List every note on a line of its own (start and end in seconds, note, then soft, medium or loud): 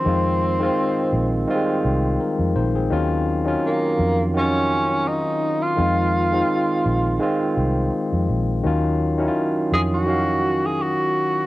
0.00 1.86 C4 medium
0.05 0.69 F2 medium
0.05 0.56 D#3 medium
0.05 0.57 G#3 medium
0.05 0.57 C4 medium
0.05 0.58 F4 medium
0.59 1.42 D#3 medium
0.59 1.43 G#3 medium
0.59 1.44 C4 medium
0.59 1.44 F4 medium
1.13 1.44 A#1 medium
1.47 2.82 D#3 medium
1.47 1.56 G3 medium
1.47 2.21 C4 medium
1.47 2.21 F4 medium
1.55 2.86 G#3 medium
1.85 2.16 C2 medium
2.21 2.55 A#4 soft
2.39 2.54 F2 medium
2.56 2.87 A#1 medium
2.56 2.75 D#4 soft
2.56 2.74 C5 medium
2.75 3.10 C4 soft
2.75 3.09 G#4 medium
2.90 3.55 D#2 medium
2.90 3.42 D#3 medium
2.90 3.42 F#3 medium
2.90 3.43 C#4 medium
2.90 3.43 F4 medium
3.44 4.28 D#3 medium
3.44 4.29 F#3 medium
3.44 4.29 C#4 medium
3.44 4.30 F4 medium
3.66 4.33 A#3 medium
3.99 5.22 F2 medium
4.34 5.69 D#3 medium
4.34 5.69 C#4 medium
4.34 5.09 C#4 loud
4.34 5.70 F4 medium
4.34 5.69 F#4 medium
5.08 5.64 D#4 loud
5.62 7.77 F4 medium
5.77 6.41 F2 medium
5.77 6.29 D#3 medium
5.77 6.29 G#3 medium
5.77 6.30 C4 medium
5.77 6.30 F4 medium
6.32 7.15 D#3 medium
6.32 7.15 G#3 medium
6.32 7.16 C4 medium
6.32 6.40 D#4 medium
6.42 7.20 F4 medium
6.86 7.17 A#1 medium
7.19 8.54 D#3 medium
7.19 8.55 G#3 medium
7.19 8.56 C4 medium
7.19 8.56 F4 medium
7.57 7.89 C2 medium
8.13 8.27 F2 medium
8.29 8.61 A#1 medium
8.63 9.28 D#2 medium
8.63 9.15 D#3 medium
8.63 9.16 F#3 medium
8.63 9.16 C#4 medium
8.63 9.17 F4 medium
9.18 10.01 D#3 medium
9.18 10.02 F#3 medium
9.18 10.02 C#4 medium
9.18 9.27 E4 medium
9.28 10.06 F4 medium
9.72 10.95 F2 medium
9.72 9.82 G#4 medium
9.94 10.67 F#4 loud
10.06 11.41 D#3 medium
10.06 11.42 C#4 medium
10.06 11.42 F#4 medium
10.06 11.43 F5 medium
10.66 10.83 G#4 medium
10.82 11.46 F#4 medium